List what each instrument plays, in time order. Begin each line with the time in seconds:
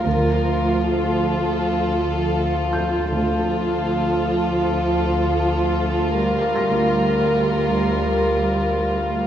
Already playing: violin section A#4, felt piano F5 F6
0.05 cello section D2, double bass section D2, viola section F3, violin section F4
0.82 violin section A4
2.73 felt piano G6
3.11 double bass section D2, cello section D2, viola section F3, violin section F4 A4
6.18 viola section G3, violin section A#4
6.56 felt piano A#6